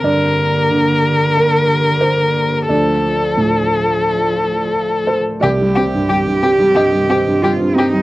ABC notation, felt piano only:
X:1
M:4/4
L:1/16
Q:1/4=90
K:Cdor
V:1 name="Felt piano"
d8 B4 c4 | d12 z2 c2 | d8 e8 |]
V:2 name="Felt piano" clef=bass
G,,4 D,12 | D,,4 A,,12 | C,, G, [CG] G,, G, G,, [CG] G, G,, G, [CG] G,, G, G,, [CG] G, |]